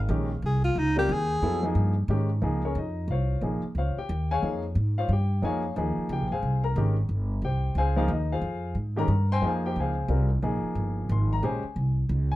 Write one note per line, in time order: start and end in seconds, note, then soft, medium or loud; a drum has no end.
0.09 0.41 A#1 loud
0.09 0.28 D#3 medium
0.09 0.28 G#3 medium
0.09 0.28 C#4 medium
0.09 0.29 G4 medium
0.42 0.75 C2 loud
0.42 0.64 G#4 medium
0.64 0.80 F4 medium
0.75 1.08 C#2 loud
0.75 0.98 D#4 medium
0.96 1.07 G3 medium
0.96 1.08 C4 medium
0.96 1.08 F4 medium
0.96 1.14 G4 medium
0.96 1.08 A#4 medium
1.09 1.41 D#2 loud
1.09 1.65 G#4 loud
1.42 1.74 F2 medium
1.42 1.61 F#3 medium
1.42 1.62 B3 medium
1.42 1.62 E4 medium
1.42 1.62 A4 medium
1.63 1.92 F3 medium
1.63 1.92 A#3 medium
1.63 1.93 D#4 medium
1.63 1.93 G#4 medium
1.75 2.08 G2 loud
2.08 2.41 G#2 loud
2.08 2.28 D#3 medium
2.08 2.28 G#3 medium
2.08 2.29 C#4 medium
2.08 2.29 G4 medium
2.42 2.74 C#2 medium
2.42 2.61 F3 medium
2.42 2.61 A#3 medium
2.42 2.61 D#4 medium
2.42 2.62 G#4 medium
2.65 2.76 C#4 medium
2.65 2.76 G#4 medium
2.65 2.76 A#4 medium
2.65 2.76 C#5 medium
2.75 3.07 F2 loud
2.75 3.08 D#4 medium
2.75 3.08 D#5 medium
3.08 3.41 C2 loud
3.08 3.41 F4 medium
3.08 3.41 F5 medium
3.12 3.41 C5 medium
3.12 3.42 C#5 medium
3.41 3.61 A#1 medium
3.41 3.61 F3 medium
3.41 3.61 A#3 medium
3.41 3.61 D#4 medium
3.41 3.62 G#4 medium
3.63 muted upright bass stroke soft
3.75 3.95 C#2 medium
3.75 3.98 C5 medium
3.75 3.98 C#5 medium
3.75 3.97 F5 medium
3.79 3.98 F4 medium
3.97 4.29 G4 medium
3.97 4.29 G5 medium
3.97 muted upright bass stroke soft
4.09 4.41 D#2 loud
4.31 4.42 G#4 medium
4.31 4.62 C#5 medium
4.31 4.62 F5 medium
4.31 4.62 G#5 loud
4.42 4.75 F2 medium
4.42 4.61 F3 medium
4.42 4.62 A#3 medium
4.42 4.62 D#4 medium
4.42 4.62 G#4 medium
4.75 5.08 G#2 loud
4.98 5.10 F4 medium
4.98 5.10 C5 medium
4.98 5.10 C#5 medium
4.98 5.09 F5 medium
5.09 5.41 G2 medium
5.09 5.42 G5 medium
5.13 5.42 G4 medium
5.42 5.75 F2 medium
5.42 5.61 F3 medium
5.42 5.62 A#3 medium
5.42 5.62 D#4 medium
5.42 5.62 G#4 medium
5.42 5.75 C#5 medium
5.42 5.75 F5 medium
5.42 5.75 G#5 medium
5.76 5.96 D#2 loud
5.76 6.26 F3 medium
5.76 6.27 A#3 medium
5.76 6.27 D#4 medium
5.76 6.27 G#4 medium
5.98 muted upright bass stroke soft
6.09 6.20 C#2 loud
6.09 6.32 G4 medium
6.09 6.26 G5 medium
6.20 6.31 A#1 soft
6.27 6.42 G#1 medium
6.27 6.29 G5 medium
6.32 6.62 G#4 medium
6.32 6.63 C5 medium
6.32 6.62 F5 medium
6.32 6.62 G#5 medium
6.42 6.75 C2 medium
6.64 6.95 A#4 medium
6.64 6.95 A#5 medium
6.76 7.08 G#1 loud
6.76 6.95 D#3 medium
6.76 6.95 G#3 medium
6.76 6.96 C#4 medium
6.76 6.96 G4 medium
7.09 7.41 G1 medium
7.42 7.74 C2 medium
7.42 7.75 G4 medium
7.42 7.75 C5 medium
7.42 7.75 G5 medium
7.75 8.08 C#2 loud
7.75 7.96 G#4 medium
7.75 7.96 C5 medium
7.75 7.96 F5 medium
7.75 7.97 G#5 medium
7.96 8.08 F3 medium
7.96 8.08 A#3 medium
7.96 8.08 D#4 medium
7.96 8.09 F4 medium
7.96 8.08 G#4 medium
7.96 8.09 C5 medium
7.96 8.09 F5 medium
8.08 8.41 D#2 loud
8.08 8.31 D#4 medium
8.08 8.31 D#5 medium
8.32 8.74 F4 medium
8.32 8.74 G#4 medium
8.32 8.74 C5 medium
8.32 8.74 F5 medium
8.41 8.74 F2 medium
8.75 9.07 G#2 medium
8.96 9.07 D#3 medium
8.96 9.08 G#3 medium
8.96 9.08 C#4 medium
8.96 9.08 G4 medium
8.96 9.29 A#4 medium
8.96 9.29 A#5 medium
9.08 9.41 G2 loud
9.32 9.43 C5 medium
9.32 9.43 G5 medium
9.32 9.43 G#5 medium
9.32 9.43 C6 loud
9.42 9.74 F2 medium
9.42 9.92 F3 medium
9.42 9.93 A#3 medium
9.42 9.93 D#4 medium
9.42 9.46 G#4 medium
9.47 9.65 G#4 medium
9.47 9.65 C5 medium
9.47 9.65 F5 medium
9.47 9.65 G#5 medium
9.66 9.77 G4 medium
9.66 9.77 C5 medium
9.66 9.77 G5 medium
9.76 10.08 C#2 medium
9.76 10.29 G#5 medium
9.80 10.29 G#4 medium
9.80 10.29 C5 medium
9.80 10.29 F5 medium
10.08 10.41 C2 loud
10.08 10.28 G3 medium
10.08 10.28 C4 medium
10.08 10.28 F4 medium
10.08 10.29 A#4 medium
10.42 10.62 A#1 medium
10.42 11.35 F3 medium
10.42 11.35 A#3 medium
10.42 11.36 D#4 medium
10.42 11.36 G#4 medium
10.64 muted upright bass stroke soft
10.75 11.08 G1 medium
11.09 11.42 G#1 loud
11.09 11.31 C6 medium
11.33 11.43 A#5 medium
11.42 11.62 A#1 medium
11.42 11.62 G#3 medium
11.42 11.62 C#4 medium
11.42 11.62 G4 medium
11.42 11.62 C5 medium
11.42 11.94 G#5 medium
11.64 muted upright bass stroke soft
11.76 12.08 C2 medium
12.09 12.36 C#2 loud
12.32 12.36 G#5 loud